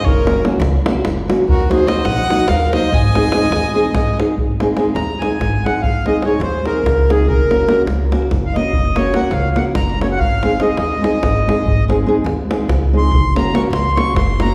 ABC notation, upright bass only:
X:1
M:7/8
L:1/8
Q:1/4=144
K:Abmix
V:1 name="Upright bass" clef=bass
G,,,3 D,, z G,,,2 | E,,3 B,,, z E,,2 | A,,,3 E,, z A,,,2 | A,,,3 E,,2 A,,,2 |
A,,,3 E,,2 D,,2 | G,,,3 D,,2 G,,,2 | G,,,3 D,,2 G,,,2 | A,,,3 E,,2 A,,,2 |
A,,,3 E,,2 D,,2 | G,,,3 D,,2 G,,,2 |]